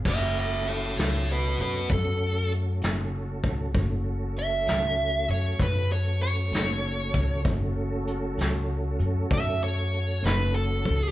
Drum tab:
CC |x-----------|------------|------------|
HH |--xx-xx-xx-x|x-xx-xx-xx-x|x-xx-xx-xx-x|
SD |---o-----o--|---o-----o--|---o-----o--|
BD |o-----o----o|o-----o----o|o-----o----o|